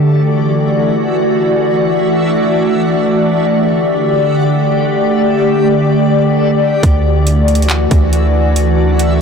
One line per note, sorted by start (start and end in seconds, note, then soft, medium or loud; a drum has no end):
0.00 3.34 E3 medium
0.00 9.21 A3 medium
0.00 3.35 D4 medium
0.00 3.34 F#4 medium
0.00 3.35 F#4 medium
0.00 9.21 D5 medium
0.00 3.35 E5 medium
3.38 6.80 D3 medium
3.38 6.80 A3 medium
3.38 6.80 G4 medium
3.38 6.80 D5 loud
6.83 7.87 D2 loud
6.83 9.21 E3 medium
6.83 9.21 D4 medium
6.83 9.21 F#4 medium
6.83 9.21 E5 loud
6.83 kick loud
6.83 closed hi-hat medium
7.27 closed hi-hat medium
7.48 closed hi-hat medium
7.55 closed hi-hat medium
7.62 closed hi-hat medium
7.70 clap loud
7.70 closed hi-hat medium
7.91 9.21 D2 loud
7.91 kick medium
7.91 closed hi-hat medium
8.13 closed hi-hat medium
8.56 closed hi-hat medium
8.99 closed hi-hat medium